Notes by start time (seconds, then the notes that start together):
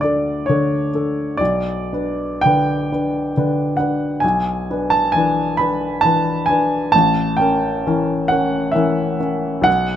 Already playing: D2 D3 D4 A4 F#5
0.01 D4 A4 D5
0.46 D3 D4 C#5
0.50 A4
0.95 D4 A4
1.37 B1 D5
1.93 D4 B4
2.41 D3 G5
2.46 D4 B4
2.92 D4 B4
3.37 D3 D4 B4
3.77 D4 B4 F#5
4.20 B1 G#5
4.70 D4 B4
4.90 A5
5.12 E3 D4 G#5
5.16 B4
5.57 D4 B4 B5
6.01 E3 D4 A5
6.06 B4
6.46 D4 G#5
6.50 B4
6.92 A1 A5
7.37 C#4 A#4 G5
7.87 E3 C#4 A#4
8.28 C#4 A#4 F#5
8.72 E3 C#4 A#4 E5
9.20 C#4 A#4
9.62 B1 F#5